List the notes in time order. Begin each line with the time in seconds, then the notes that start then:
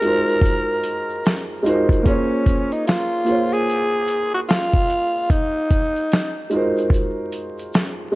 Already playing: A#4
0.01 G#3 D#4 F4 F#4, closed hi-hat, shaker
0.06 A#4 C5
0.28 closed hi-hat, shaker
0.41 kick, shaker
0.46 closed hi-hat
0.83 closed hi-hat, shaker
1.09 shaker
1.24 snare, closed hi-hat, shaker
1.62 G#3 D#4 F4 F#4, closed hi-hat, shaker
1.67 A#4 C5
1.89 kick, closed hi-hat, shaker
2.02 A#3 F4 G#4, kick, closed hi-hat, shaker
2.07 C#4 C5 C#5
2.46 kick, closed hi-hat, shaker
2.72 D#4, closed hi-hat
2.87 F4, snare, closed hi-hat, shaker
3.24 A#3 F4 G#4, closed hi-hat, shaker
3.29 C5 C#5
3.52 G#4, closed hi-hat, shaker
3.68 closed hi-hat, shaker
4.08 closed hi-hat, shaker
4.34 F#4, closed hi-hat, shaker
4.48 F4, snare, closed hi-hat, shaker
4.73 kick
4.89 closed hi-hat, shaker
5.15 shaker
5.30 D#4, kick, closed hi-hat, shaker
5.71 kick, closed hi-hat, shaker
5.96 closed hi-hat
6.11 snare, closed hi-hat, shaker
6.50 G#3 D#4 F4 F#4, closed hi-hat, shaker
6.54 A#4 C5
6.76 closed hi-hat, shaker
6.90 kick, shaker
6.94 closed hi-hat
7.32 closed hi-hat, shaker
7.58 closed hi-hat, shaker
7.73 snare, closed hi-hat, shaker
8.12 G#3